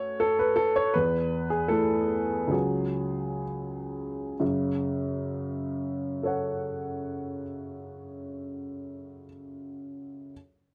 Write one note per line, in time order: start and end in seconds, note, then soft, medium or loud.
0.00 0.88 A3 soft
0.00 0.89 C#4 soft
0.00 0.89 F#4 soft
0.00 0.20 C#5 medium
0.20 0.38 A4 medium
0.39 0.56 B4 medium
0.56 0.74 A4 medium
0.76 0.93 C#5 medium
0.94 1.68 E2 soft
0.94 1.49 B4 medium
1.50 1.69 G#4 medium
1.68 2.49 A3 soft
1.68 2.49 E4 soft
1.68 2.52 A4 medium
2.48 4.34 C#2 soft
2.48 4.35 F#3 soft
2.48 4.35 F#4 soft
2.52 3.44 G#4 medium
4.40 7.41 F#2 soft
4.40 7.42 C#3 soft
6.23 9.25 A4 soft
6.23 9.27 C#5 soft
6.23 9.29 F#5 soft